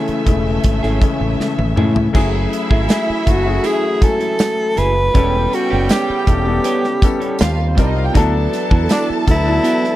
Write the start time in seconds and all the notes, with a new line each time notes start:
Already playing: C#3 E3 G#3 A3 C#4 E4 G#4 E5
0.08 muted fingered electric bass stroke, closed hi-hat
0.26 E1 C#3 E3 G#3 A3 E4, muted clean electric guitar stroke, kick, closed hi-hat
0.46 muted clean electric guitar stroke
0.64 G#1, muted clean electric guitar stroke, kick, closed hi-hat
0.83 G#1 C#4 E4 G#4, snare
1.01 C#3 E3 G#3 A3 C#4, muted clean electric guitar stroke, kick, closed hi-hat
1.21 A1, muted clean electric guitar stroke
1.39 muted clean electric guitar stroke, muted fingered electric bass stroke, snare
1.59 A1, high tom
1.76 A2 C#3 E3 G#3 A3 C#4 E4 G#4, mid tom
1.95 muted clean electric guitar stroke, floor tom
2.13 F#1 E3 F#3 A3 C#4 E4 F#4 G#4 E5, kick, crash, tambourine
2.51 muted clean electric guitar stroke, closed hi-hat, tambourine
2.70 G#1 A3 E4 G#4, kick
2.88 A3 E4 G#4, snare, closed hi-hat, tambourine
3.10 muted fingered electric bass stroke
3.26 F#1 F#3 A3 C#4 E4 F#4, muted clean electric guitar stroke, kick, closed hi-hat, tambourine
3.45 F#3 A3 C#4 E4 G#4, muted clean electric guitar stroke
3.63 A3 E4 G#4, closed hi-hat, tambourine
4.01 F#3 G#3 C#4 E4 A4 G#5, muted clean electric guitar stroke, kick, closed hi-hat, tambourine
4.08 A3
4.20 A3 E4 A4, closed hi-hat
4.39 muted clean electric guitar stroke, snare, closed hi-hat, tambourine
4.76 F#1 A3 E4 G#4 B4, closed hi-hat, tambourine
4.95 muted clean electric guitar stroke
5.14 E1 C#3 G3 B3 C#4 E4 G4 A4 G5, kick, closed hi-hat, tambourine
5.52 F#4, muted clean electric guitar stroke, closed hi-hat, tambourine
5.70 F#1 B3 C#4 G4
5.89 B3 C#4 G4, snare, closed hi-hat, tambourine
6.10 muted fingered electric bass stroke
6.26 E1 G3 B3 C#4 E4 A4, muted clean electric guitar stroke, kick, closed hi-hat, tambourine
6.45 G3 B3 C#4 E4 A4, muted clean electric guitar stroke
6.64 B3 C#4 G4, closed hi-hat, tambourine
6.84 snare
7.02 G3 B3 C#4 E4 A4, muted clean electric guitar stroke, kick, closed hi-hat, tambourine
7.20 B3 C#4 A4, closed hi-hat
7.39 D#2 F3 C4 F4 F5, muted clean electric guitar stroke, snare, closed hi-hat, tambourine
7.49 A3 A4
7.59 A#3 A#4
7.68 C4 C5
7.76 C2 G3 C4 D4 D#4 F4 A#4 D5, kick, closed hi-hat, tambourine
7.87 D#4 D#5
7.95 F4 F5, muted clean electric guitar stroke
8.06 G4 G5
8.13 D2 E3 F#3 B3 D4 E4 F#4 A4 A5, kick, closed hi-hat, tambourine
8.51 muted clean electric guitar stroke, snare, closed hi-hat, tambourine
8.70 E2 B3 E4 F#4, kick
8.89 B3 D4 E4 F#4, snare, closed hi-hat, tambourine
9.10 muted fingered electric bass stroke
9.26 D2 F#3 B3 D4 E4 A4, muted clean electric guitar stroke, kick, closed hi-hat, tambourine
9.31 E4
9.45 F#3 B3 D4 E4 A4, muted clean electric guitar stroke
9.64 B3 E4 F#4, closed hi-hat, tambourine
9.84 snare